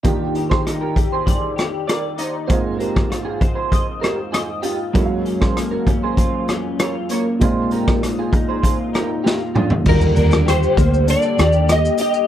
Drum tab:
CC |----------------|----------------|----------------|----------------|
HH |x-x-x-x-x-x-x-x-|x-x-x-x-x-x-x-x-|x-x-x-x-x-x-x-x-|x-x-x-x-x-x-----|
SH |----------------|----------------|----------------|----------------|
SD |---rr-----r-r---|---rr-----r-r---|---rr-----r-r---|---rr-----r-o---|
T2 |----------------|----------------|----------------|--------------o-|
FT |----------------|----------------|----------------|---------------o|
BD |o--o--o-o-------|o--o--o-o-------|o--o--o-o-------|o--o--o-o-------|

CC |x---------------|
HH |--x-x-x-x-x-x-x-|
SH |-xxxxxxxxxxxxxxx|
SD |---rr-----r-r---|
T2 |----------------|
FT |----------------|
BD |o-----o---------|